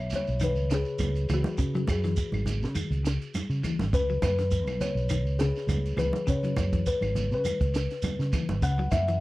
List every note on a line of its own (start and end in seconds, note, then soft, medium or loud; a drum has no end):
0.00 0.11 B1 medium
0.00 0.14 C#5 loud
0.10 closed hi-hat medium
0.10 high conga medium
0.10 low conga medium
0.10 shekere medium
0.16 0.41 C#5 loud
0.27 0.57 B1 medium
0.27 shekere soft
0.40 0.67 D#3 medium
0.40 0.56 B4 medium
0.40 closed hi-hat medium
0.40 high conga medium
0.40 claves medium
0.40 shekere medium
0.56 0.83 C#2 medium
0.56 shekere soft
0.70 0.97 C#3 medium
0.70 1.33 G#4 loud
0.70 snare medium
0.70 closed hi-hat medium
0.70 shekere medium
0.85 shekere soft
0.98 1.26 C#2 medium
0.98 closed hi-hat medium
0.98 high conga medium
0.98 low conga medium
0.98 claves medium
0.98 shekere medium
1.15 closed hi-hat soft
1.15 shekere soft
1.29 1.43 C#2 medium
1.29 1.56 E3 medium
1.29 closed hi-hat soft
1.29 low conga medium
1.29 claves medium
1.29 shekere medium
1.34 1.92 F#4 medium
1.44 closed hi-hat soft
1.44 high conga medium
1.44 shekere soft
1.58 1.72 C#3 medium
1.58 1.84 C#3 medium
1.58 kick medium
1.58 closed hi-hat medium
1.58 shekere medium
1.74 2.01 F#3 medium
1.74 closed hi-hat soft
1.74 high conga medium
1.74 shekere soft
1.87 2.14 F#2 medium
1.87 3.02 G#4 medium
1.87 kick medium
1.87 closed hi-hat medium
1.87 high conga medium
1.87 claves medium
1.87 shekere medium
2.03 2.30 E3 medium
2.03 snare soft
2.03 closed hi-hat soft
2.03 shekere soft
2.16 kick medium
2.16 closed hi-hat medium
2.16 shekere medium
2.32 2.64 G#1 medium
2.32 high conga medium
2.32 claves medium
2.32 shekere soft
2.46 closed hi-hat medium
2.46 high conga medium
2.46 low conga medium
2.46 shekere medium
2.62 2.74 C#3 medium
2.62 snare soft
2.62 shekere soft
2.75 3.02 D#3 medium
2.75 muted fingered electric bass stroke soft
2.75 closed hi-hat medium
2.75 high conga medium
2.75 claves medium
2.75 shekere medium
2.91 3.17 C#2 medium
2.91 closed hi-hat soft
2.91 shekere soft
3.04 3.31 C#3 medium
3.04 snare medium
3.04 closed hi-hat soft
3.04 shekere medium
3.21 closed hi-hat soft
3.21 shekere soft
3.34 snare soft
3.34 closed hi-hat medium
3.34 high conga medium
3.34 claves medium
3.34 shekere medium
3.50 3.62 C#3 medium
3.50 shekere soft
3.63 3.90 E3 medium
3.63 muted fingered electric bass stroke soft
3.63 closed hi-hat soft
3.63 high conga medium
3.63 low conga medium
3.63 claves medium
3.63 shekere medium
3.79 3.91 G#1 medium
3.79 snare soft
3.79 closed hi-hat soft
3.79 high conga medium
3.79 shekere soft
3.93 4.19 C#2 medium
3.93 4.07 C#3 medium
3.93 4.07 B4 loud
3.93 kick loud
3.93 closed hi-hat medium
3.93 shekere medium
4.09 4.35 F#3 medium
4.09 shekere soft
4.22 4.67 F#2 loud
4.22 4.77 B4 loud
4.22 kick medium
4.22 closed hi-hat medium
4.22 high conga medium
4.22 low conga medium
4.22 claves medium
4.22 shekere medium
4.38 4.65 D#3 medium
4.38 snare soft
4.38 closed hi-hat soft
4.38 shekere soft
4.51 kick medium
4.51 closed hi-hat medium
4.51 shekere medium
4.67 4.79 B1 loud
4.67 high conga medium
4.67 claves medium
4.67 shekere soft
4.81 5.35 C#5 loud
4.81 closed hi-hat medium
4.81 high conga medium
4.81 low conga medium
4.81 shekere medium
4.95 5.25 B1 loud
4.95 shekere soft
5.09 5.36 D#3 medium
5.09 closed hi-hat medium
5.09 claves medium
5.09 shekere medium
5.25 5.51 C#2 medium
5.25 shekere soft
5.39 5.67 C#3 medium
5.39 5.94 G#4 medium
5.39 snare medium
5.39 closed hi-hat soft
5.39 shekere medium
5.56 snare soft
5.56 shekere soft
5.67 5.94 C#2 medium
5.67 closed hi-hat medium
5.67 high conga medium
5.67 low conga medium
5.67 claves medium
5.67 shekere medium
5.86 closed hi-hat soft
5.86 shekere soft
5.97 6.11 C#2 medium
5.97 6.24 E3 medium
5.97 6.28 B4 medium
5.97 closed hi-hat soft
5.97 high conga medium
5.97 low conga medium
5.97 claves medium
5.97 shekere medium
6.13 closed hi-hat soft
6.13 high conga medium
6.13 shekere soft
6.27 6.41 C#3 medium
6.27 6.53 C#3 loud
6.27 6.83 C#5 loud
6.27 kick medium
6.27 closed hi-hat medium
6.27 shekere medium
6.43 6.70 F#3 medium
6.43 closed hi-hat soft
6.43 high conga medium
6.43 shekere soft
6.57 6.83 F#2 medium
6.57 kick medium
6.57 closed hi-hat medium
6.57 high conga medium
6.57 low conga medium
6.57 claves medium
6.57 shekere medium
6.72 6.99 E3 medium
6.72 kick medium
6.72 closed hi-hat soft
6.72 shekere soft
6.86 7.33 B4 medium
6.86 kick medium
6.86 closed hi-hat medium
6.86 shekere medium
7.01 7.33 G#1 medium
7.01 high conga medium
7.01 claves medium
7.01 shekere soft
7.15 closed hi-hat soft
7.15 high conga medium
7.15 low conga medium
7.15 shekere medium
7.31 7.43 C#3 medium
7.31 8.30 B4 medium
7.31 shekere soft
7.45 7.71 D#3 medium
7.45 muted fingered electric bass stroke soft
7.45 closed hi-hat medium
7.45 high conga medium
7.45 claves medium
7.45 shekere medium
7.60 7.86 C#2 medium
7.60 kick medium
7.60 closed hi-hat soft
7.60 shekere soft
7.74 8.00 C#3 medium
7.74 snare medium
7.74 closed hi-hat soft
7.74 shekere medium
7.91 snare soft
7.91 closed hi-hat soft
7.91 shekere soft
8.02 closed hi-hat medium
8.02 high conga medium
8.02 low conga medium
8.02 claves medium
8.02 shekere medium
8.19 8.31 C#3 medium
8.19 snare soft
8.19 shekere soft
8.33 8.59 E3 medium
8.33 muted fingered electric bass stroke soft
8.33 kick medium
8.33 closed hi-hat soft
8.33 high conga medium
8.33 low conga medium
8.33 claves medium
8.33 shekere medium
8.49 8.60 G#1 medium
8.49 closed hi-hat soft
8.49 high conga medium
8.49 shekere soft
8.62 8.88 C#2 medium
8.62 8.76 C#3 medium
8.62 8.76 F#5 loud
8.62 kick medium
8.62 closed hi-hat medium
8.62 shekere medium
8.78 9.05 F#3 medium
8.78 high conga medium
8.78 shekere soft
8.91 9.20 F#2 medium
8.91 9.20 E5 medium
8.91 kick medium
8.91 closed hi-hat soft
8.91 high conga medium
8.91 low conga medium
8.91 claves medium
8.91 shekere medium
9.08 9.20 E3 medium
9.08 closed hi-hat soft
9.08 shekere soft